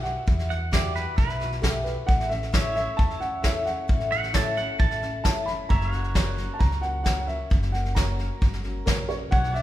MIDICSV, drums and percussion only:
0, 0, Header, 1, 2, 480
1, 0, Start_track
1, 0, Tempo, 452148
1, 292, Time_signature, 4, 2, 24, 8
1, 10216, End_track
2, 0, Start_track
2, 0, Title_t, "Drums"
2, 55, Note_on_c, 9, 38, 35
2, 161, Note_off_c, 9, 38, 0
2, 292, Note_on_c, 9, 38, 35
2, 293, Note_on_c, 9, 36, 111
2, 398, Note_off_c, 9, 38, 0
2, 399, Note_off_c, 9, 36, 0
2, 415, Note_on_c, 9, 38, 37
2, 522, Note_off_c, 9, 38, 0
2, 538, Note_on_c, 9, 38, 33
2, 644, Note_off_c, 9, 38, 0
2, 773, Note_on_c, 9, 36, 87
2, 775, Note_on_c, 9, 38, 116
2, 775, Note_on_c, 9, 44, 87
2, 879, Note_off_c, 9, 36, 0
2, 881, Note_off_c, 9, 38, 0
2, 881, Note_off_c, 9, 44, 0
2, 1013, Note_on_c, 9, 38, 37
2, 1120, Note_off_c, 9, 38, 0
2, 1252, Note_on_c, 9, 36, 111
2, 1253, Note_on_c, 9, 38, 35
2, 1358, Note_off_c, 9, 36, 0
2, 1359, Note_off_c, 9, 38, 0
2, 1371, Note_on_c, 9, 38, 33
2, 1477, Note_off_c, 9, 38, 0
2, 1494, Note_on_c, 9, 38, 35
2, 1600, Note_off_c, 9, 38, 0
2, 1616, Note_on_c, 9, 38, 34
2, 1722, Note_off_c, 9, 38, 0
2, 1734, Note_on_c, 9, 36, 82
2, 1738, Note_on_c, 9, 38, 107
2, 1738, Note_on_c, 9, 44, 84
2, 1840, Note_off_c, 9, 36, 0
2, 1844, Note_off_c, 9, 38, 0
2, 1844, Note_off_c, 9, 44, 0
2, 1975, Note_on_c, 9, 38, 37
2, 2081, Note_off_c, 9, 38, 0
2, 2214, Note_on_c, 9, 36, 113
2, 2215, Note_on_c, 9, 38, 33
2, 2321, Note_off_c, 9, 36, 0
2, 2321, Note_off_c, 9, 38, 0
2, 2336, Note_on_c, 9, 38, 37
2, 2442, Note_off_c, 9, 38, 0
2, 2455, Note_on_c, 9, 38, 33
2, 2561, Note_off_c, 9, 38, 0
2, 2576, Note_on_c, 9, 38, 31
2, 2683, Note_off_c, 9, 38, 0
2, 2691, Note_on_c, 9, 38, 113
2, 2691, Note_on_c, 9, 44, 84
2, 2694, Note_on_c, 9, 36, 90
2, 2798, Note_off_c, 9, 38, 0
2, 2798, Note_off_c, 9, 44, 0
2, 2800, Note_off_c, 9, 36, 0
2, 2934, Note_on_c, 9, 38, 36
2, 3041, Note_off_c, 9, 38, 0
2, 3174, Note_on_c, 9, 36, 115
2, 3175, Note_on_c, 9, 38, 36
2, 3280, Note_off_c, 9, 36, 0
2, 3281, Note_off_c, 9, 38, 0
2, 3296, Note_on_c, 9, 38, 35
2, 3402, Note_off_c, 9, 38, 0
2, 3412, Note_on_c, 9, 38, 33
2, 3518, Note_off_c, 9, 38, 0
2, 3649, Note_on_c, 9, 38, 113
2, 3649, Note_on_c, 9, 44, 88
2, 3653, Note_on_c, 9, 36, 90
2, 3756, Note_off_c, 9, 38, 0
2, 3756, Note_off_c, 9, 44, 0
2, 3759, Note_off_c, 9, 36, 0
2, 3892, Note_on_c, 9, 38, 35
2, 3998, Note_off_c, 9, 38, 0
2, 4129, Note_on_c, 9, 38, 36
2, 4133, Note_on_c, 9, 36, 111
2, 4235, Note_off_c, 9, 38, 0
2, 4239, Note_off_c, 9, 36, 0
2, 4251, Note_on_c, 9, 38, 37
2, 4357, Note_off_c, 9, 38, 0
2, 4373, Note_on_c, 9, 38, 32
2, 4479, Note_off_c, 9, 38, 0
2, 4491, Note_on_c, 9, 38, 34
2, 4597, Note_off_c, 9, 38, 0
2, 4607, Note_on_c, 9, 38, 112
2, 4607, Note_on_c, 9, 44, 88
2, 4611, Note_on_c, 9, 36, 85
2, 4713, Note_off_c, 9, 38, 0
2, 4713, Note_off_c, 9, 44, 0
2, 4718, Note_off_c, 9, 36, 0
2, 4849, Note_on_c, 9, 38, 36
2, 4955, Note_off_c, 9, 38, 0
2, 5086, Note_on_c, 9, 38, 36
2, 5092, Note_on_c, 9, 36, 118
2, 5192, Note_off_c, 9, 38, 0
2, 5199, Note_off_c, 9, 36, 0
2, 5211, Note_on_c, 9, 38, 34
2, 5317, Note_off_c, 9, 38, 0
2, 5333, Note_on_c, 9, 38, 33
2, 5439, Note_off_c, 9, 38, 0
2, 5571, Note_on_c, 9, 38, 112
2, 5571, Note_on_c, 9, 44, 85
2, 5573, Note_on_c, 9, 36, 86
2, 5677, Note_off_c, 9, 38, 0
2, 5677, Note_off_c, 9, 44, 0
2, 5679, Note_off_c, 9, 36, 0
2, 5811, Note_on_c, 9, 38, 35
2, 5918, Note_off_c, 9, 38, 0
2, 6052, Note_on_c, 9, 38, 35
2, 6054, Note_on_c, 9, 36, 110
2, 6158, Note_off_c, 9, 38, 0
2, 6160, Note_off_c, 9, 36, 0
2, 6172, Note_on_c, 9, 38, 36
2, 6278, Note_off_c, 9, 38, 0
2, 6292, Note_on_c, 9, 38, 32
2, 6398, Note_off_c, 9, 38, 0
2, 6414, Note_on_c, 9, 38, 33
2, 6520, Note_off_c, 9, 38, 0
2, 6531, Note_on_c, 9, 38, 106
2, 6531, Note_on_c, 9, 44, 88
2, 6533, Note_on_c, 9, 36, 86
2, 6638, Note_off_c, 9, 38, 0
2, 6638, Note_off_c, 9, 44, 0
2, 6639, Note_off_c, 9, 36, 0
2, 6772, Note_on_c, 9, 38, 37
2, 6878, Note_off_c, 9, 38, 0
2, 7009, Note_on_c, 9, 38, 36
2, 7012, Note_on_c, 9, 36, 109
2, 7115, Note_off_c, 9, 38, 0
2, 7118, Note_off_c, 9, 36, 0
2, 7132, Note_on_c, 9, 38, 33
2, 7238, Note_off_c, 9, 38, 0
2, 7250, Note_on_c, 9, 38, 32
2, 7356, Note_off_c, 9, 38, 0
2, 7492, Note_on_c, 9, 38, 105
2, 7492, Note_on_c, 9, 44, 83
2, 7494, Note_on_c, 9, 36, 86
2, 7598, Note_off_c, 9, 38, 0
2, 7598, Note_off_c, 9, 44, 0
2, 7600, Note_off_c, 9, 36, 0
2, 7738, Note_on_c, 9, 38, 35
2, 7844, Note_off_c, 9, 38, 0
2, 7974, Note_on_c, 9, 38, 34
2, 7975, Note_on_c, 9, 36, 113
2, 8080, Note_off_c, 9, 38, 0
2, 8082, Note_off_c, 9, 36, 0
2, 8096, Note_on_c, 9, 38, 36
2, 8202, Note_off_c, 9, 38, 0
2, 8215, Note_on_c, 9, 38, 35
2, 8321, Note_off_c, 9, 38, 0
2, 8337, Note_on_c, 9, 38, 32
2, 8443, Note_off_c, 9, 38, 0
2, 8456, Note_on_c, 9, 36, 84
2, 8456, Note_on_c, 9, 38, 111
2, 8456, Note_on_c, 9, 44, 86
2, 8562, Note_off_c, 9, 36, 0
2, 8562, Note_off_c, 9, 38, 0
2, 8562, Note_off_c, 9, 44, 0
2, 8696, Note_on_c, 9, 38, 36
2, 8803, Note_off_c, 9, 38, 0
2, 8938, Note_on_c, 9, 36, 116
2, 8938, Note_on_c, 9, 38, 36
2, 9044, Note_off_c, 9, 36, 0
2, 9045, Note_off_c, 9, 38, 0
2, 9058, Note_on_c, 9, 38, 37
2, 9164, Note_off_c, 9, 38, 0
2, 9174, Note_on_c, 9, 38, 33
2, 9280, Note_off_c, 9, 38, 0
2, 9417, Note_on_c, 9, 36, 89
2, 9419, Note_on_c, 9, 38, 111
2, 9419, Note_on_c, 9, 44, 86
2, 9524, Note_off_c, 9, 36, 0
2, 9525, Note_off_c, 9, 38, 0
2, 9525, Note_off_c, 9, 44, 0
2, 9659, Note_on_c, 9, 38, 35
2, 9765, Note_off_c, 9, 38, 0
2, 9896, Note_on_c, 9, 38, 34
2, 9897, Note_on_c, 9, 36, 108
2, 10002, Note_off_c, 9, 38, 0
2, 10004, Note_off_c, 9, 36, 0
2, 10021, Note_on_c, 9, 38, 37
2, 10127, Note_off_c, 9, 38, 0
2, 10140, Note_on_c, 9, 38, 32
2, 10216, Note_off_c, 9, 38, 0
2, 10216, End_track
0, 0, End_of_file